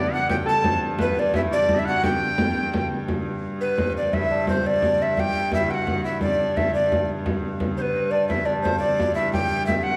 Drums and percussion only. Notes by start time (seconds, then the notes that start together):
0.29 frame drum
0.64 frame drum
0.99 frame drum
1.34 frame drum
1.69 frame drum
2.03 frame drum
2.38 frame drum
2.56 frame drum
2.74 frame drum
3.08 frame drum
3.27 frame drum
3.78 frame drum
4.13 frame drum
4.31 frame drum
4.47 frame drum
4.82 frame drum
5.17 frame drum
5.35 frame drum
5.52 frame drum
5.87 frame drum
6.21 frame drum
6.57 frame drum
6.74 frame drum
6.92 frame drum
7.09 frame drum
7.26 frame drum
7.44 frame drum
7.60 frame drum
8.30 frame drum
8.47 frame drum
8.65 frame drum
9.00 frame drum
9.34 frame drum
9.51 frame drum
9.68 frame drum